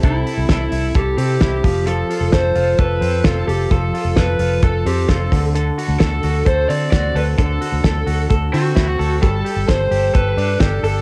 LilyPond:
<<
  \new Staff \with { instrumentName = "Lead electric guitar" } { \time 4/4 \key d \dorian \tempo 4 = 131 e'4 e'4 g'8 g'4. | a'4 c''4 b'4 a'8 g'8 | a'4 b'4 a'8 g'8 a'8. r16 | r4 a'4 c''8 d''8 d''8 b'8 |
a'2 r8 fis'4. | a'4 c''4 b'4 a'8 a'8 | }
  \new Staff \with { instrumentName = "Clean electric guitar" } { \time 4/4 \key d \dorian <c c' e' a'>8 e'8 a'8 e'8 a'8 c'8 e'8 f8 | <f a'>8 f'8 a'8 f'8 a'8 c'8 f'8 a'8 | <f a'>8 f'8 a'8 f'8 a'8 c'8 f'8 d8 | <d a'>8 fis'8 a'8 fis'8 a'8 c'8 fis'8 a'8 |
<d a'>8 fis'8 a'8 fis'8 a'8 c'8 e'16 fis'16 a'8 | <g a'>8 g'8 a'8 g'8 a'8 d'8 g'8 a'8 | }
  \new Staff \with { instrumentName = "Fingered electric bass" } { \clef bass \time 4/4 \key d \dorian c,8 r16 c,16 c,8 c,8 c,8 c8 c,8 f,,8~ | f,,8 r16 f,,16 f,,8 f,,8 f,,8 f,8 f,,8 f,,8 | f,,8 r16 f,,16 f,,8 f,,8 f,,8 f,8 f,,8 d,8~ | d,8 r16 d,16 d,8 d,8 d,8 d8 d,8 d,8 |
d,8 r16 d,16 d,8 d,8 d,8 d8 d,8 d,8 | g,,8 r16 g,,16 g,,8 g,,8 g,,8 g,8 g,,8 g,,8 | }
  \new DrumStaff \with { instrumentName = "Drums" } \drummode { \time 4/4 <hh bd>8 hho8 <hh bd sn>8 hho8 <hh bd>8 hho8 <hh bd sn>8 <hho bd>8 | hh8 hho8 <hh bd sn>8 hho8 <hh bd>8 hho8 <hh bd sn>8 hho8 | <hh bd>8 hho8 <hh bd sn>8 hho8 <hh bd>8 hho8 <hh bd sn>8 <hho bd>8 | hh8 hho8 <hh bd sn>8 hho8 <hh bd>8 hho8 <hh bd sn>8 hho8 |
<hh bd>8 hho8 <hh bd sn>8 hho8 <hh bd>8 hho8 <hh bd sn>8 hho8 | <hh bd>8 hho8 <hh bd sn>8 hho8 <hh bd>8 hho8 <hh bd sn>8 hho8 | }
>>